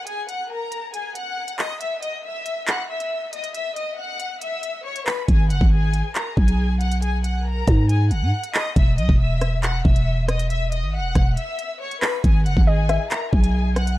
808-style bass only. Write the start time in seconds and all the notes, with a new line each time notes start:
5.28 G#1
5.50 F#1
5.61 G#1
6.37 B1
7.68 G#2
8.11 F#1
8.22 G#2
8.76 E1
8.98 B1
9.09 E1
9.85 E1
10.83 G#1
10.99 E1
11.15 E1
12.24 G#1
12.46 F#1
12.57 G#1
13.33 B1